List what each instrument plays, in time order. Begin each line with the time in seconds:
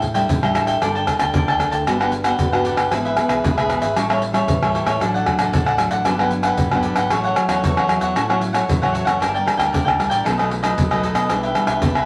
Already playing: fingered electric bass A2, nylon-string guitar A2
0.02 muted cavaquinho stroke, pandeiro, surdo
0.14 nylon-string guitar G3 D4 E4, cavaquinho A4 E5 G5, pandeiro, shaker
0.29 fingered electric bass A1, nylon-string guitar E3, pandeiro, shaker, surdo
0.43 nylon-string guitar G3 D4 E4, cavaquinho A4 E5 G5, pandeiro, tamborim, shaker
0.54 cavaquinho D4 A4 E5 G5, pandeiro, tamborim, shaker
0.67 cavaquinho A4 E5 G5, pandeiro, shaker
0.82 fingered electric bass G1, nylon-string guitar G3 A#3 D4 A4, cavaquinho A#4 D5 G5 A5, pandeiro, tamborim, shaker, surdo
0.95 cavaquinho D5 G5 A5, pandeiro, shaker
1.07 nylon-string guitar A#3 D4 A4, pandeiro, tamborim, shaker, surdo
1.19 fingered electric bass D2, cavaquinho D5 G5 A5, pandeiro, tamborim, shaker
1.34 fingered electric bass D2, nylon-string guitar D3, cavaquinho A#4 D5 G5 A5, pandeiro, shaker, surdo
1.48 cavaquinho D5 G5 A5, pandeiro, tamborim, shaker
1.59 nylon-string guitar A#3 D4 A4, pandeiro, tamborim, shaker
1.71 fingered electric bass D2, cavaquinho D5 G5 A5, pandeiro, shaker
1.86 fingered electric bass G1, nylon-string guitar G3 B3 D4 F#4, cavaquinho D4 G4 B4 F#5, pandeiro, tamborim, shaker, surdo
2.00 nylon-string guitar B3 D4 F#4, cavaquinho G4 B4 F#5, pandeiro, tamborim, shaker
2.12 muted cavaquinho stroke, pandeiro, shaker
2.24 nylon-string guitar B3 D4 F#4, cavaquinho G4 B4 F#5, pandeiro, tamborim, shaker
2.39 fingered electric bass G1, nylon-string guitar D3 B3 D4 F#4, pandeiro, shaker, surdo
2.52 nylon-string guitar B3 D4 F#4, cavaquinho G4 B4 F#5, pandeiro, tamborim, shaker
2.64 cavaquinho D4 G4 B4 F#5, pandeiro, shaker
2.76 fingered electric bass F#1, cavaquinho G4 B4 F#5, pandeiro, tamborim, shaker
2.91 fingered electric bass G#1, nylon-string guitar G#2 E3 B3 E4, cavaquinho E4 G#4 B4 E5, pandeiro, tamborim, shaker, surdo
3.05 cavaquinho G#4 B4 E5, pandeiro, shaker
3.17 nylon-string guitar E3 B3 E4, pandeiro, tamborim, shaker
3.29 fingered electric bass B1, cavaquinho G#4 B4 E5, pandeiro, tamborim, shaker
3.44 fingered electric bass B1, nylon-string guitar G#2, cavaquinho E4 G#4 B4 E5, pandeiro, shaker, surdo
3.57 cavaquinho G#4 B4 E5, pandeiro, tamborim, shaker
3.69 nylon-string guitar E3 B3 E4, pandeiro, tamborim, shaker
3.81 fingered electric bass G#1, cavaquinho G#4 B4 E5, pandeiro, shaker
3.96 fingered electric bass A1, nylon-string guitar A2 G3 C#4 E4, cavaquinho G4 A4 C#5 E5, pandeiro, tamborim, shaker, surdo
4.08 nylon-string guitar G3 C#4 E4, cavaquinho C#5 E5, pandeiro, tamborim, shaker
4.13 cavaquinho A4
4.22 muted cavaquinho stroke, pandeiro
4.33 nylon-string guitar G3 C#4 E4, cavaquinho A4 C#5 E5, pandeiro, tamborim, shaker
4.47 fingered electric bass A1, nylon-string guitar E3, pandeiro, shaker, surdo
4.62 nylon-string guitar G3 C#4 E4, cavaquinho A4 C#5 E5, pandeiro, tamborim, shaker
4.74 cavaquinho G4 A4 C#5 E5, pandeiro
4.86 fingered electric bass A2, cavaquinho A4 C#5 E5, pandeiro, tamborim, shaker
4.99 fingered electric bass A1, nylon-string guitar A2 F#3 A3 D4, cavaquinho D4 A4 D5 F#5, pandeiro, tamborim, shaker, surdo
5.14 cavaquinho A4 D5 F#5, pandeiro, shaker
5.25 nylon-string guitar F#3 A3 D4, pandeiro, tamborim, surdo
5.39 fingered electric bass A1, cavaquinho A4 D5 F#5, pandeiro, tamborim, shaker
5.52 fingered electric bass A1, nylon-string guitar A2, cavaquinho D4 A4 D5 F#5, pandeiro, shaker, surdo
5.66 cavaquinho A4 D5 F#5, pandeiro, tamborim, shaker
5.77 nylon-string guitar F#3 A3 D4, pandeiro, tamborim, shaker
5.91 fingered electric bass A1, cavaquinho A4 D5 F#5, pandeiro, shaker
6.04 fingered electric bass G1, nylon-string guitar G2 F#3 B3 D4, cavaquinho D4 G4 B4 F#5, pandeiro, tamborim, shaker, surdo
6.19 nylon-string guitar F#3 B3 D4, cavaquinho G4 B4 F#5, pandeiro, tamborim, shaker
6.31 muted cavaquinho stroke, pandeiro, shaker
6.43 cavaquinho G4 B4 F#5, pandeiro, tamborim, shaker
6.57 fingered electric bass G1, nylon-string guitar D3, pandeiro, shaker, surdo
6.71 nylon-string guitar F#3 B3 D4, cavaquinho G4 B4 F#5, pandeiro, tamborim, shaker
6.83 cavaquinho D4 G4 B4 F#5, pandeiro, shaker
6.96 fingered electric bass G#1, cavaquinho G4 B4 F#5, pandeiro, tamborim, shaker
7.10 fingered electric bass A1, nylon-string guitar A2 F#3 C#4 E4, cavaquinho F#4 A4 C#5 F#5, pandeiro, tamborim, shaker, surdo
7.24 cavaquinho A4 C#5 F#5, pandeiro, shaker
7.35 nylon-string guitar F#3 C#4 E4, pandeiro, tamborim, shaker
7.48 fingered electric bass E2, cavaquinho A4 C#5 F#5, pandeiro, tamborim, shaker
7.63 fingered electric bass E2, nylon-string guitar E3, cavaquinho F#4 A4 C#5 F#5, pandeiro, shaker, surdo
7.77 cavaquinho A4 C#5 F#5, pandeiro, tamborim, shaker
7.88 nylon-string guitar F#3 C#4 E4, pandeiro, tamborim, shaker
8.01 fingered electric bass E2, cavaquinho A4 C#5 F#5, pandeiro, shaker
8.15 nylon-string guitar A2, fingered electric bass A2, cavaquinho F#4 A4 C#5 F#5, pandeiro, tamborim, shaker, surdo
8.29 nylon-string guitar F#3 C#4 E4, cavaquinho A4 C#5 F#5, pandeiro, tamborim, shaker
8.41 muted cavaquinho stroke, pandeiro, shaker
8.53 nylon-string guitar F#3 C#4 E4, cavaquinho A4 C#5 F#5, pandeiro, tamborim, shaker
8.68 fingered electric bass A1, nylon-string guitar E3 F#3 C#4 E4, pandeiro, shaker, surdo
8.81 nylon-string guitar F#3 C#4 E4, cavaquinho A4 C#5 F#5, pandeiro, tamborim, shaker
8.93 cavaquinho F#4 A4 C#5 F#5, pandeiro, shaker
9.05 fingered electric bass F#1, cavaquinho A4 C#5 F#5, pandeiro, tamborim, shaker
9.20 fingered electric bass G1, nylon-string guitar G2 G3 A#3 D4, cavaquinho D4 A#4 D5 G5, pandeiro, tamborim, shaker, surdo
9.34 cavaquinho A#4 D5 G5, pandeiro, shaker
9.46 nylon-string guitar G3 A#3 D4, pandeiro, tamborim, shaker
9.57 fingered electric bass D2, cavaquinho A#4 D5 G5, pandeiro, tamborim, shaker
9.72 fingered electric bass D2, nylon-string guitar D3, cavaquinho D4 A#4 D5 G5, pandeiro, shaker, surdo
9.85 cavaquinho A#4 D5 G5, pandeiro, tamborim, shaker
9.99 nylon-string guitar G3 A#3 D4, pandeiro, tamborim
10.10 fingered electric bass A1, cavaquinho A#4 D5 G5, pandeiro, shaker
10.24 fingered electric bass B1, nylon-string guitar B2 F#3 A3 D#4, cavaquinho D#4 A4 B4 D#5, pandeiro, tamborim, shaker, surdo
10.37 nylon-string guitar F#3 A3 D#4, cavaquinho A4 B4 D#5, pandeiro, tamborim, shaker
10.50 muted cavaquinho stroke, pandeiro
10.62 nylon-string guitar F#3 A3 D#4, cavaquinho A4 B4 D#5, pandeiro, tamborim, shaker
10.77 fingered electric bass B1, nylon-string guitar F#2 F#3 A3 D#4, pandeiro, shaker, surdo
10.91 nylon-string guitar F#3 A3 D#4, cavaquinho A4 B4 D#5, pandeiro, tamborim, shaker
11.03 cavaquinho D#4 A4 B4 D#5, pandeiro, shaker
11.15 fingered electric bass B2, cavaquinho A4 B4 D#5, pandeiro, tamborim, shaker
11.29 fingered electric bass B1, nylon-string guitar B2 G3 D4 E4, cavaquinho D4 G4 B4 E5, pandeiro, tamborim, shaker, surdo
11.43 cavaquinho G4 B4 E5, pandeiro, shaker
11.55 nylon-string guitar G3 D4 E4, pandeiro, tamborim, shaker
11.67 fingered electric bass B1, cavaquinho G4 B4 E5, pandeiro, tamborim, shaker
11.82 fingered electric bass B1, nylon-string guitar B2, cavaquinho D4 G4 B4 E5, pandeiro, shaker, surdo
11.95 cavaquinho G4 B4 E5, pandeiro, tamborim, shaker